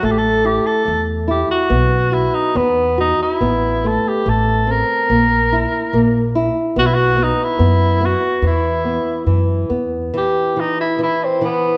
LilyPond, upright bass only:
\new Staff \with { instrumentName = "Upright bass" } { \clef bass \time 2/4 \key e \minor \tempo 4 = 72 a,,4 e,4 | b,,4 e,4 | a,,4 a,,4 | ais,,4 ais,,4 |
b,,4 fis,4 | e,4 fis,8 e,8 | r2 | }